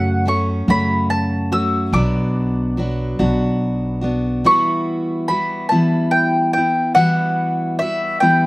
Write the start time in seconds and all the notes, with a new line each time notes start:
Already playing: F#2 C#3 F#3 A3 C#4 F#4 F#5
0.25 F#3 A3 C#4 F#4 C#6
0.68 F#2 C#3 F#3 A3 C#4 F#4 B5
1.10 A5
1.52 F#3 A3 C#4 F#4 E6
1.93 B1 B2 F#3 B3 D4 F#4 D6
2.77 F#3 B3 D4 F#4
3.19 B1 B2 F#3 B3 D4 F#4
4.01 B3 D4 F#4
4.44 E3 G3 B3 E4 F#4 C#6
5.28 G3 B3 E4 F#4 B5
5.69 E3 G3 B3 E4 A5
6.11 G5
6.53 E4 G5
6.58 B3
6.95 E3 G3 B3 E4 F#4 F#5
7.79 G3 B3 E4 F#4 E5
8.20 E3 G3 B3 E4 G5